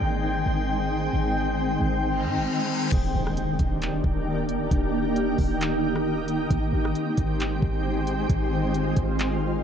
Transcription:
0.00 0.44 G#1 loud
0.00 2.88 D#3 medium
0.00 2.89 G#3 medium
0.00 2.89 C4 medium
0.00 2.89 G#4 medium
0.00 2.88 G5 medium
0.00 2.89 G5 medium
0.00 2.89 C6 medium
0.46 1.10 G#1 loud
1.13 1.78 G#1 loud
1.80 2.27 G#1 loud
2.03 reverse cymbal medium
2.25 2.38 G#2 medium
2.36 2.47 G#1 loud
2.92 3.14 D#1 loud
2.92 9.63 D#3 medium
2.92 6.47 A#3 medium
2.92 4.70 D4 medium
2.92 6.47 G4 medium
2.92 kick loud
2.92 closed hi-hat medium
2.92 crash medium
2.92 impact medium
3.15 3.58 D#1 loud
3.27 cross-stick medium
3.37 closed hi-hat medium
3.59 4.02 D#1 loud
3.59 kick medium
3.59 closed hi-hat medium
3.82 clap loud
3.82 closed hi-hat medium
4.04 4.69 D#1 loud
4.04 kick medium
4.49 closed hi-hat medium
4.71 5.36 D#1 loud
4.71 6.49 D#4 medium
4.71 kick loud
4.71 closed hi-hat medium
5.16 closed hi-hat medium
5.38 6.46 D#1 loud
5.38 kick medium
5.38 open hi-hat medium
5.61 clap loud
5.61 closed hi-hat medium
5.96 cross-stick medium
6.28 closed hi-hat medium
6.51 6.72 G#1 loud
6.51 9.63 G#3 medium
6.51 9.63 C4 medium
6.51 8.28 G4 medium
6.51 kick loud
6.51 closed hi-hat medium
6.73 6.94 G#1 loud
6.85 cross-stick medium
6.95 closed hi-hat medium
7.17 7.61 G#1 loud
7.17 kick medium
7.17 closed hi-hat medium
7.40 clap loud
7.40 closed hi-hat medium
7.62 8.27 G#1 loud
7.62 kick medium
8.07 closed hi-hat medium
8.30 8.94 G#1 loud
8.30 9.63 F4 medium
8.30 kick loud
8.30 closed hi-hat medium
8.74 closed hi-hat medium
8.96 9.63 G#1 loud
8.96 kick loud
8.96 closed hi-hat medium
9.19 clap loud
9.19 closed hi-hat medium

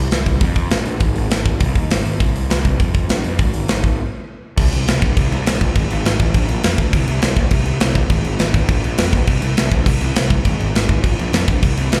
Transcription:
0.11 0.25 C2 medium
0.11 snare medium
0.11 open hi-hat medium
0.26 0.39 C2 medium
0.26 kick medium
0.26 open hi-hat medium
0.41 0.67 F2 medium
0.41 kick loud
0.41 open hi-hat medium
0.56 kick medium
0.56 open hi-hat soft
0.71 0.84 A#1 medium
0.71 snare loud
0.71 open hi-hat medium
0.85 0.99 A#1 medium
0.85 open hi-hat medium
1.00 1.14 G#1 medium
1.00 kick loud
1.00 open hi-hat medium
1.16 1.29 G#1 medium
1.16 open hi-hat medium
1.31 1.44 G#1 medium
1.31 snare loud
1.31 open hi-hat medium
1.45 1.58 G#1 medium
1.45 kick medium
1.45 open hi-hat medium
1.60 1.73 C2 medium
1.60 kick loud
1.60 open hi-hat medium
1.75 1.88 D#2 medium
1.75 kick medium
1.75 open hi-hat medium
1.90 2.03 G#1 medium
1.90 snare loud
1.90 open hi-hat medium
2.05 2.18 G#1 medium
2.05 open hi-hat medium
2.20 2.46 C2 medium
2.20 kick loud
2.20 open hi-hat medium
2.36 open hi-hat medium
2.50 2.63 C2 loud
2.50 snare loud
2.50 open hi-hat medium
2.65 2.78 C2 medium
2.65 kick medium
2.65 open hi-hat soft
2.80 3.05 F2 medium
2.80 kick medium
2.80 open hi-hat medium
2.94 kick medium
2.94 open hi-hat soft
3.09 3.22 A#1 medium
3.09 snare loud
3.09 open hi-hat medium
3.24 3.37 F2 medium
3.24 open hi-hat medium
3.39 3.52 G#1 medium
3.39 kick loud
3.39 open hi-hat medium
3.53 3.66 G#1 medium
3.53 open hi-hat medium
3.68 3.81 G#1 medium
3.68 snare loud
3.68 open hi-hat medium
3.84 3.96 G#1 medium
3.84 kick medium
3.84 open hi-hat medium
4.57 4.68 C2 loud
4.57 kick loud
4.57 crash loud
4.57 crash medium
4.73 4.83 C2 medium
4.73 crash medium
4.88 4.98 C2 medium
4.88 snare loud
4.88 crash medium
5.02 5.13 A#1 medium
5.02 kick loud
5.02 crash medium
5.17 5.27 C2 medium
5.17 kick loud
5.17 crash medium
5.31 5.42 C2 loud
5.31 crash medium
5.46 5.67 A#1 loud
5.46 snare loud
5.46 crash loud
5.61 kick loud
5.61 crash medium
5.75 5.86 G#1 medium
5.75 kick loud
5.75 crash medium
5.90 6.01 G#1 medium
5.90 crash medium
6.05 6.15 G#1 loud
6.05 snare loud
6.05 crash medium
6.19 6.30 A1 medium
6.19 kick medium
6.19 crash medium
6.34 6.45 A#1 loud
6.34 kick loud
6.34 crash medium
6.48 6.59 A#1 loud
6.48 crash medium
6.63 6.74 F2 loud
6.63 snare loud
6.63 crash loud
6.78 6.89 D2 medium
6.78 kick medium
6.78 crash medium
6.93 7.04 C2 loud
6.93 kick medium
6.93 crash medium
7.08 7.19 C2 medium
7.08 crash medium
7.22 7.33 C2 loud
7.22 snare loud
7.22 crash medium
7.36 7.47 A#1 loud
7.36 kick medium
7.36 crash medium
7.51 7.62 C2 medium
7.51 kick loud
7.51 crash loud
7.66 7.77 C2 medium
7.66 crash medium
7.80 8.02 C2 loud
7.80 snare loud
7.80 crash medium
7.95 kick loud
7.95 crash medium
8.10 8.21 G#1 loud
8.10 kick loud
8.10 crash medium
8.24 8.35 G#1 medium
8.24 crash medium
8.39 8.50 G#1 loud
8.39 snare loud
8.39 crash medium
8.54 8.65 G#1 medium
8.54 kick medium
8.54 crash medium
8.69 8.80 A#1 loud
8.69 kick loud
8.69 crash medium
8.84 8.95 A#1 loud
8.84 crash medium
8.98 9.09 F2 loud
8.98 snare loud
8.98 crash loud
9.13 9.24 A#1 loud
9.13 kick medium
9.13 crash medium
9.27 9.38 C2 medium
9.27 kick loud
9.27 crash medium
9.42 9.53 C2 medium
9.42 crash medium
9.57 9.68 C2 loud
9.57 snare loud
9.57 crash medium
9.71 9.82 A#1 loud
9.71 kick loud
9.71 crash medium
9.86 9.97 C2 medium
9.86 kick loud
9.86 crash loud
10.01 10.12 C2 medium
10.01 crash medium
10.16 10.38 C2 loud
10.16 snare loud
10.16 crash medium
10.30 kick medium
10.30 crash medium
10.45 10.56 G#1 medium
10.45 kick loud
10.45 crash medium
10.60 10.71 G#1 medium
10.60 crash medium
10.75 10.86 G#1 loud
10.75 snare loud
10.75 crash medium
10.89 11.00 G#1 medium
10.89 kick medium
10.89 crash medium
11.04 11.15 A#1 medium
11.04 kick loud
11.04 crash medium
11.19 11.30 A#1 loud
11.19 crash medium
11.33 11.44 F2 loud
11.33 snare loud
11.33 crash loud
11.48 11.59 A#1 loud
11.48 kick loud
11.48 crash medium
11.63 11.74 C2 loud
11.63 kick medium
11.63 crash loud
11.77 11.89 C2 loud
11.77 crash medium
11.92 12.00 C2 loud
11.92 snare loud
11.92 crash loud

